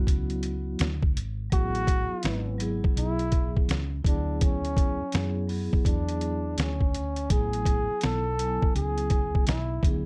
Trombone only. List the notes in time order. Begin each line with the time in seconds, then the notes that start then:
1.53 F#4
2.98 E4
4.07 D4
4.43 C#4
5.86 D4
6.59 C#4
7.31 G#4
8.04 A4
8.76 G#4
9.47 E4